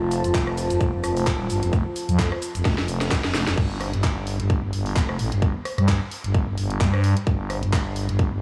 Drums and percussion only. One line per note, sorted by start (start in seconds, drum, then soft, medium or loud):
0.11 open hi-hat loud
0.11 cabasa medium
0.24 closed hi-hat medium
0.24 cabasa soft
0.34 kick loud
0.34 clap loud
0.34 closed hi-hat medium
0.34 cabasa soft
0.47 cross-stick medium
0.58 open hi-hat loud
0.58 cabasa medium
0.70 closed hi-hat medium
0.70 cabasa soft
0.81 kick loud
0.81 closed hi-hat medium
0.81 cabasa soft
1.04 cross-stick medium
1.04 open hi-hat loud
1.04 cabasa medium
1.17 open hi-hat medium
1.17 cabasa soft
1.27 kick loud
1.27 clap loud
1.27 closed hi-hat medium
1.27 cabasa soft
1.50 open hi-hat loud
1.50 cabasa medium
1.63 closed hi-hat medium
1.63 cabasa medium
1.73 kick loud
1.73 closed hi-hat medium
1.73 cabasa soft
1.96 open hi-hat loud
1.96 cabasa medium
2.09 closed hi-hat medium
2.09 cabasa soft
2.19 kick loud
2.19 clap loud
2.19 closed hi-hat medium
2.19 cabasa soft
2.32 cross-stick medium
2.42 open hi-hat loud
2.42 cabasa medium
2.55 closed hi-hat medium
2.55 cabasa soft
2.65 kick loud
2.65 snare medium
2.65 closed hi-hat medium
2.65 cabasa soft
2.78 snare medium
2.88 open hi-hat loud
2.88 cabasa medium
3.01 snare medium
3.01 closed hi-hat medium
3.01 cabasa soft
3.11 kick loud
3.11 snare medium
3.11 clap loud
3.11 closed hi-hat medium
3.11 cabasa soft
3.24 snare medium
3.35 snare loud
3.35 open hi-hat loud
3.35 cabasa medium
3.47 snare medium
3.47 closed hi-hat medium
3.47 cabasa soft
3.58 kick loud
3.58 closed hi-hat medium
3.58 crash medium
3.81 cross-stick medium
3.81 open hi-hat loud
3.94 closed hi-hat medium
4.04 kick loud
4.04 clap loud
4.04 closed hi-hat medium
4.27 open hi-hat loud
4.40 closed hi-hat medium
4.50 kick loud
4.50 closed hi-hat medium
4.73 open hi-hat loud
4.86 open hi-hat medium
4.96 kick loud
4.96 clap loud
4.96 closed hi-hat soft
5.09 cross-stick medium
5.19 open hi-hat loud
5.32 closed hi-hat medium
5.42 kick loud
5.42 closed hi-hat medium
5.65 cross-stick medium
5.65 open hi-hat loud
5.78 cross-stick medium
5.78 closed hi-hat medium
5.88 kick loud
5.88 clap loud
5.88 closed hi-hat medium
6.11 open hi-hat loud
6.24 closed hi-hat medium
6.34 kick loud
6.34 closed hi-hat medium
6.58 open hi-hat loud
6.70 closed hi-hat medium
6.81 kick loud
6.81 clap loud
6.81 closed hi-hat soft
6.94 cross-stick medium
7.04 open hi-hat loud
7.17 closed hi-hat medium
7.27 kick loud
7.27 closed hi-hat medium
7.50 cross-stick medium
7.50 open hi-hat loud
7.63 closed hi-hat medium
7.73 kick loud
7.73 clap loud
7.73 closed hi-hat soft
7.96 open hi-hat loud
8.09 closed hi-hat medium
8.19 kick loud
8.19 closed hi-hat medium